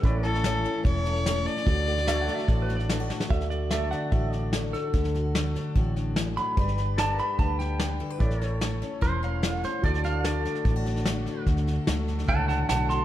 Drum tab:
HH |----p-------p---|----p-------p---|----p-------p---|----p-------p---|
SD |o-ooo-o-o-ooo-oo|o-ooo-ooo-ooo-oo|ooo-o-o-o-o-o-o-|ooo-o-o-o-o-o-o-|
BD |o-------o-------|o-------o-------|o-------o-------|o-------o-------|

HH |----p-------p---|----p-------p---|----p-------p---|----p-------p---|
SD |ooo-o-o-o-o-o-o-|ooo-o-o-o-o-o-o-|ooo-o-ooo-ooo-o-|ooo-o-ooo-o-o-o-|
BD |o-------o-------|o-------o-------|o-------o-------|o-------o-------|